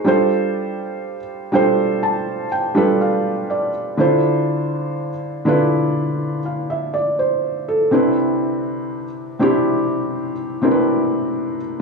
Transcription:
\new Staff \with { instrumentName = "Felt piano" } { \time 4/4 \key d \dorian \tempo 4 = 61 << { r4. g''8 a''8 g''8 f''8 d''8 | r2 r8 f''16 e''16 d''16 c''8 a'16~ | a'16 r2. r8. | } \\ { <g d' f' a' c''>4~ <g d' f' a' c''>16 r16 <g d' f' a' c''>4 r16 <g d' f' a' b'>4 r16 | <d d' e' f' c''>4~ <d d' e' f' c''>16 r16 <d d' e' f' b'>4 r4. | <c c' d' e' b'>4~ <c c' d' e' b'>16 r16 <c c' d' e' g'>4 r16 <c c' d' e' bes' b'>4 r16 | } >> }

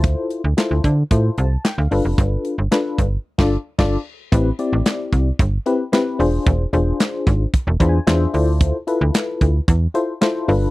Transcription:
<<
  \new Staff \with { instrumentName = "FM electric piano" } { \time 4/4 \key a \minor \tempo 4 = 112 << { r2 r8 a''8 g''16 f''8 r16 | r1 | r1 | r2 \tuplet 3/2 { r8. b''16 gis''8 } e''8 d''8 |
r1 | } \\ { <e' f' a' c''>8. r16 <e' f' a' c''>8. r16 <e' f' a' c''>8. r8. <d' f' a' b'>8~ | <d' f' a' b'>8. r16 <d' f' a' b'>8. r8 <d' f' a' d''>8 r16 <d' f' a' d''>8 r8 | <c' e' g' b'>16 r16 <c' e' g' d''>4~ <c' e' g' d''>16 r8. <c' e' g' b'>16 r16 <c' e' g' b'>8 <d' f' gis' c''>8~ | <d' f' gis' c''>16 r16 <d' f' gis' c''>4~ <d' f' gis' c''>16 r8. <d' f' gis' c''>16 r16 <d' f' gis' c''>8 <e' f' a' c''>8~ |
<e' f' a' c''>16 r16 <e' f' a' b'>4~ <e' f' a' b'>16 r8. <e' f' a' c''>16 r16 <e' f' a' c''>8 <d' f' a' b'>8 | } >> }
  \new Staff \with { instrumentName = "FM bass" } { \clef bass \time 4/4 \key a \minor d,8 r16 d,16 r16 d,16 d8 a,8 c,8 r16 d,16 g,,16 f,,16 | g,,8 r16 g,,16 r8 g,,8 r16 g,,8 r16 g,,8 r8 | a,,8 r16 a,,16 r8 c,8 g,,8 r4 e,,8 | e,,8 e,,8 r8 gis,,8 r16 e,,16 e,8 e,8 d,8~ |
d,8 r16 d,16 r8 d,8 e,8 r4 g,,8 | }
  \new DrumStaff \with { instrumentName = "Drums" } \drummode { \time 4/4 <hh bd>8 hh8 <hc hh sn>8 <hh bd>8 <hh bd>8 hh8 <hc hh sn>8 hho8 | <hh bd>8 hh8 <hc hh sn>8 <hh bd>8 r16 <cymc bd sn>8. <cymc bd sn>4 | <hh bd>8 hh8 <hc hh sn>8 <hh bd>8 <hh bd>8 hh8 <hc hh sn>8 hho8 | <hh bd>8 hh8 <hc hh sn>8 <hh bd>8 <hh bd>8 <hh bd>8 <hc hh sn>8 hho8 |
<hh bd>8 hh8 <hc hh sn>8 <hh bd>8 <hh bd>8 hh8 <hc hh sn>8 hho8 | }
>>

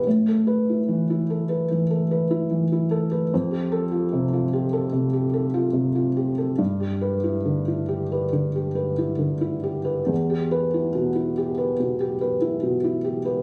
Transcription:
\new Staff \with { instrumentName = "Felt piano" } { \time 4/4 \key e \phrygian \tempo 4 = 72 << { r8 b'8 r2. | r8 a'8 r2. | r8 b'8 r2. | r8 b'8 r2. | } \\ { a,16 a'8 e'16 e16 e'16 a'16 b'16 e16 a'16 b'16 e'16 e16 e'16 a'16 b'16 | f,16 g'8 f'16 c16 f'16 g'16 a'16 c16 g'16 a'16 f'16 c16 f'16 g'16 a'16 | g,16 g'8 e'16 d16 e'16 g'16 b'16 d16 g'16 b'16 e'16 d16 e'16 g'16 b'16 | e,16 g'8 e'16 b,16 e'16 g'16 b'16 b,16 g'16 b'16 e'16 b,16 e'16 g'16 b'16 | } >> }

